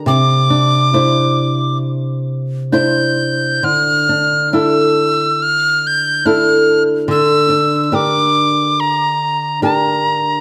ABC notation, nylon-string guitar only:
X:1
M:4/4
L:1/8
Q:1/4=69
K:Dm
V:1 name="Nylon-string guitar"
C, D [DEc]4 [DEc]2 | D, D [DEA]4 [DEA]2 | D, D [DGB]4 [DGB]2 |]